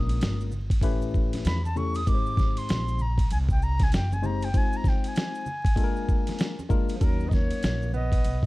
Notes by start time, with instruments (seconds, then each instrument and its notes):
Already playing: upright bass A#1, tine electric piano G#3 A#3 C#4 F4 A#4, flute D#6
0.09 ride, maracas
0.21 upright bass G1, snare, hi-hat pedal, ride, maracas
0.41 maracas
0.52 low conga, maracas
0.70 kick, ride, maracas
0.81 upright bass A1, tine electric piano A3 C#4 E4 G4 B4, kick, ride, maracas
1.02 maracas
1.14 kick, maracas
1.33 snare, ride, high conga, maracas
1.45 upright bass E2, flute B5, snare, hi-hat pedal, ride, maracas
1.65 flute A5, high conga, maracas
1.76 tine electric piano A3 C#4 E4 G4 A4, flute C#6, low conga, maracas
1.94 flute D#6, ride, maracas
2.06 upright bass G#1, tine electric piano G#3 C4 D#4 G4 A#4, flute D6, kick, ride, maracas
2.14 tine electric piano C5
2.26 maracas
2.37 kick, snare, low conga, maracas
2.57 flute C6, ride, maracas
2.69 upright bass A#1, snare, hi-hat pedal, ride, maracas
2.88 maracas
2.99 flute A#5, low conga, maracas
3.18 kick, ride, maracas
3.31 upright bass C2, flute G#5, ride, maracas
3.49 flute G5, kick, maracas
3.62 flute A#5, maracas
3.79 flute G#5, kick, snare, ride, high conga, maracas
3.92 upright bass F#1, flute G5, snare, hi-hat pedal, ride, maracas
4.12 flute G#5, high conga, maracas
4.22 tine electric piano G#3 C4 D#4 G4 C5, flute A#5, low conga, maracas
4.41 flute G5, ride, maracas
4.54 tine electric piano G#3 C4 D#4 F4 C5, flute G#5, kick, ride, maracas
4.73 flute A#5, maracas
4.84 kick, snare, low conga, maracas
4.88 flute G5
5.04 flute G#5, ride, maracas
5.15 snare, hi-hat pedal, ride, maracas
5.35 maracas
5.46 low conga, maracas
5.65 kick, ride, maracas
5.76 tine electric piano G#3 A#3 D4 F4 A4, kick, ride, maracas
5.84 tine electric piano A#4
5.96 maracas
6.09 kick, maracas
6.27 snare, ride, high conga, maracas
6.39 snare, hi-hat pedal, ride, maracas
6.59 high conga, maracas
6.69 tine electric piano G#3 A#3 D4 F4 A#4, kick, low conga, maracas
6.89 ride, maracas
6.95 tenor saxophone F3, flute A4
6.99 upright bass D#2, tine electric piano F#3 A#3 C#4 D#4 A#4, tenor saxophone F#3, kick, ride, maracas
7.04 flute A#4
7.20 maracas
7.26 tenor saxophone B3, flute D#5
7.31 tenor saxophone A#3, flute C#5, kick, snare, high conga, low conga, maracas
7.50 muted upright bass stroke, ride, maracas
7.63 upright bass A#1, snare, hi-hat pedal, ride, maracas
7.82 high conga, maracas
7.93 tenor saxophone B3, flute D#5, low conga, maracas
8.12 kick, ride, maracas
8.25 upright bass B1, ride, maracas
8.43 kick